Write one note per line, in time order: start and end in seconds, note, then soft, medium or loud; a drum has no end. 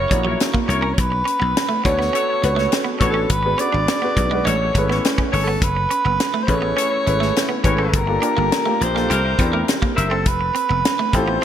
0.00 0.10 E4 medium
0.00 0.10 A#4 medium
0.00 0.11 C#5 medium
0.00 0.40 C#5 medium
0.10 0.34 A#1 medium
0.10 0.89 A#3 medium
0.10 0.89 D4 medium
0.10 0.89 E4 medium
0.10 0.90 F#4 medium
0.10 0.89 C#5 medium
0.10 muted clean electric guitar stroke soft
0.10 kick medium
0.10 closed hi-hat medium
0.25 0.36 F#3 medium
0.25 0.39 E4 medium
0.25 0.39 A#4 medium
0.25 0.39 C#5 medium
0.40 snare medium
0.40 closed hi-hat medium
0.54 0.65 A#3 medium
0.54 kick medium
0.68 0.92 C2 medium
0.68 0.88 E4 medium
0.68 0.88 A#4 medium
0.68 0.88 C#5 medium
0.68 muted clean electric guitar stroke soft
0.68 closed hi-hat medium
0.81 0.94 C#4 medium
0.81 0.95 A#4 medium
0.93 1.01 C#5 medium
0.98 1.22 B1 loud
0.98 1.84 B4 loud
0.98 kick loud
0.98 closed hi-hat loud
1.12 muted clean electric guitar stroke soft
1.25 1.37 C#4 medium
1.25 closed hi-hat medium
1.40 1.53 B1 loud
1.40 1.52 B3 medium
1.57 snare loud
1.57 closed hi-hat medium
1.69 1.81 A3 medium
1.84 2.09 D2 medium
1.84 2.24 B3 medium
1.84 2.24 D4 medium
1.84 2.24 F#4 medium
1.84 2.24 A4 medium
1.84 2.97 C#5 loud
1.84 2.25 C#5 medium
1.84 muted clean electric guitar stroke soft
1.84 kick medium
1.84 closed hi-hat medium
1.99 2.10 B3 medium
1.99 snare soft
2.13 2.25 C#4 medium
2.13 2.23 F#4 medium
2.13 2.23 A4 medium
2.13 2.24 C#5 loud
2.13 closed hi-hat medium
2.28 2.41 F#4 medium
2.28 2.41 A4 medium
2.28 2.41 C#5 medium
2.42 2.67 C#2 medium
2.42 2.82 B3 medium
2.42 2.82 D4 medium
2.42 2.82 F#4 medium
2.42 2.83 A4 medium
2.42 2.83 B4 medium
2.42 muted clean electric guitar stroke soft
2.42 closed hi-hat medium
2.56 2.68 A3 medium
2.56 2.69 F#4 medium
2.56 2.69 A4 medium
2.56 2.70 C#5 medium
2.56 snare soft
2.72 snare medium
2.72 closed hi-hat medium
2.84 2.97 B3 medium
2.99 3.24 A1 medium
2.99 3.30 B3 medium
2.99 3.30 D4 medium
2.99 3.19 F#4 medium
2.99 3.30 F#4 medium
2.99 3.19 A4 medium
2.99 3.30 A4 medium
2.99 3.19 C#5 medium
2.99 3.30 C#5 medium
2.99 muted clean electric guitar stroke soft
2.99 kick medium
2.99 closed hi-hat medium
3.10 3.32 A4 medium
3.14 3.26 C#4 medium
3.29 3.53 G#1 loud
3.29 3.61 B4 loud
3.29 kick loud
3.29 closed hi-hat loud
3.43 3.54 B3 medium
3.43 3.55 D4 medium
3.43 3.55 F#4 medium
3.43 3.55 G#4 medium
3.43 3.55 B4 medium
3.43 muted clean electric guitar stroke soft
3.58 3.88 B3 medium
3.58 3.70 C#4 medium
3.58 3.89 D4 medium
3.58 3.89 F#4 medium
3.58 3.89 G#4 medium
3.58 3.89 B4 medium
3.58 4.48 D5 loud
3.58 closed hi-hat medium
3.72 3.85 G#1 medium
3.72 3.84 D4 medium
3.88 snare loud
3.88 closed hi-hat medium
4.02 4.13 B3 medium
4.02 4.22 B3 medium
4.02 4.22 D4 medium
4.02 4.23 F#4 medium
4.02 4.23 G#4 medium
4.02 4.23 B4 medium
4.17 4.40 B1 medium
4.17 muted clean electric guitar stroke soft
4.17 kick medium
4.17 closed hi-hat medium
4.31 4.43 G#3 medium
4.31 4.47 B3 medium
4.31 4.47 D4 medium
4.31 4.47 F#4 medium
4.31 4.47 G#4 medium
4.31 4.47 B4 medium
4.45 4.70 A1 medium
4.45 4.57 G#3 medium
4.45 4.55 C#4 medium
4.45 4.55 A4 medium
4.45 4.55 C#5 loud
4.45 5.04 C#5 loud
4.45 closed hi-hat medium
4.61 4.73 C#4 medium
4.61 4.73 A4 medium
4.61 4.74 C#5 medium
4.75 4.98 G#1 medium
4.75 5.54 A3 medium
4.75 4.82 B3 medium
4.75 5.54 E4 medium
4.75 5.54 G#4 medium
4.75 5.55 B4 medium
4.75 muted clean electric guitar stroke soft
4.75 kick medium
4.75 closed hi-hat medium
4.83 5.57 C#4 medium
4.89 5.01 B3 medium
4.89 5.03 C#4 medium
4.89 5.03 A4 medium
4.89 5.03 C#5 medium
4.89 snare soft
5.05 snare medium
5.05 closed hi-hat medium
5.18 5.29 C#4 medium
5.18 kick medium
5.32 5.56 G1 medium
5.32 5.51 C#4 medium
5.32 5.51 A4 medium
5.32 5.51 C#5 medium
5.32 muted clean electric guitar stroke soft
5.32 open hi-hat medium
5.43 5.65 A4 medium
5.48 5.59 B3 medium
5.62 5.85 F#1 medium
5.62 6.44 B4 loud
5.62 kick loud
5.62 closed hi-hat medium
5.76 muted clean electric guitar stroke soft
5.90 6.02 C#4 medium
5.90 closed hi-hat medium
6.05 6.17 F#1 medium
6.05 6.16 B3 medium
6.20 snare loud
6.20 closed hi-hat medium
6.34 6.45 A3 medium
6.43 6.51 C5 medium
6.47 6.72 A1 medium
6.47 6.88 A3 medium
6.47 6.88 C#4 medium
6.47 6.88 E4 medium
6.47 6.88 G#4 medium
6.47 6.88 B4 medium
6.47 7.66 C#5 loud
6.47 muted clean electric guitar stroke soft
6.47 kick medium
6.47 closed hi-hat medium
6.62 6.74 B3 medium
6.76 6.86 C#4 medium
6.76 6.88 C#4 medium
6.76 6.86 A4 medium
6.76 6.86 C#5 loud
6.76 closed hi-hat medium
6.90 7.04 C#4 medium
6.90 7.04 A4 medium
6.90 7.03 C#5 medium
7.06 7.30 G#1 medium
7.06 7.46 A3 medium
7.06 7.46 C#4 medium
7.06 7.46 E4 medium
7.06 7.46 G#4 medium
7.06 7.47 B4 medium
7.06 muted clean electric guitar stroke soft
7.06 closed hi-hat medium
7.20 7.32 A3 medium
7.20 7.33 C#4 medium
7.20 7.33 A4 medium
7.20 7.33 C#5 medium
7.20 snare soft
7.36 snare medium
7.36 closed hi-hat medium
7.49 7.61 B3 medium
7.64 7.88 G#1 medium
7.64 7.93 A3 medium
7.64 7.94 C#4 medium
7.64 7.94 E4 medium
7.64 8.02 G4 medium
7.64 7.94 G#4 medium
7.64 8.02 A#4 medium
7.64 7.94 B4 medium
7.64 8.02 C#5 medium
7.64 muted clean electric guitar stroke soft
7.64 kick medium
7.64 closed hi-hat medium
7.77 7.90 C#4 medium
7.77 7.97 A4 medium
7.93 8.17 G1 medium
7.93 8.84 A#4 loud
7.93 kick loud
7.93 closed hi-hat medium
8.06 8.17 A#3 medium
8.06 8.18 D4 medium
8.06 8.18 F4 medium
8.06 8.18 G4 medium
8.06 8.18 A4 medium
8.06 muted clean electric guitar stroke soft
8.21 8.52 A#3 medium
8.21 8.52 D4 medium
8.21 8.34 D4 medium
8.21 8.52 F4 medium
8.21 8.52 G4 medium
8.21 8.52 A4 medium
8.21 closed hi-hat medium
8.37 8.49 G1 loud
8.37 8.48 A#3 medium
8.52 snare loud
8.52 closed hi-hat medium
8.65 8.77 A3 medium
8.65 8.86 A#3 medium
8.65 8.86 D4 medium
8.65 8.86 F4 medium
8.65 8.86 G4 medium
8.65 8.86 A#4 medium
8.81 9.04 A#1 medium
8.81 9.71 C5 medium
8.81 muted clean electric guitar stroke soft
8.81 closed hi-hat medium
8.94 9.10 A#3 medium
8.94 9.07 A#3 medium
8.94 9.10 D4 medium
8.94 9.10 F4 medium
8.94 9.10 G4 medium
8.94 9.10 A4 medium
8.94 snare soft
9.10 9.33 C2 loud
9.10 9.21 C4 medium
9.10 9.20 E4 medium
9.10 9.20 G4 medium
9.10 9.20 A#4 loud
9.10 closed hi-hat medium
9.24 9.37 E4 medium
9.24 9.37 G4 medium
9.24 9.37 A#4 medium
9.39 9.63 E2 medium
9.39 10.17 C4 medium
9.39 10.17 D4 medium
9.39 10.18 E4 medium
9.39 10.18 G4 medium
9.39 10.18 A#4 medium
9.39 muted clean electric guitar stroke soft
9.39 kick medium
9.39 closed hi-hat medium
9.52 9.65 A3 medium
9.52 9.65 E4 medium
9.52 9.65 G4 medium
9.52 9.65 A#4 medium
9.68 snare medium
9.68 closed hi-hat medium
9.82 9.94 A#3 medium
9.82 kick medium
9.96 10.26 F#1 loud
9.96 10.15 A#4 medium
9.96 10.15 C5 medium
9.96 10.15 E5 loud
9.96 muted clean electric guitar stroke soft
9.96 closed hi-hat medium
10.09 10.23 C4 medium
10.09 10.29 A4 medium
10.26 10.50 F1 medium
10.26 11.17 B4 medium
10.26 kick loud
10.26 closed hi-hat medium
10.41 muted clean electric guitar stroke soft
10.55 10.66 C4 medium
10.55 closed hi-hat medium
10.69 10.82 F1 medium
10.69 10.81 B3 medium
10.85 snare loud
10.85 closed hi-hat medium
10.99 11.10 A3 medium
11.13 11.37 A1 medium
11.13 11.44 C4 medium
11.13 11.44 E4 medium
11.13 11.44 F4 medium
11.13 11.44 G4 medium
11.13 11.44 A4 medium
11.13 11.44 C5 loud
11.13 muted clean electric guitar stroke soft
11.13 kick medium
11.13 closed hi-hat medium
11.28 11.39 B3 medium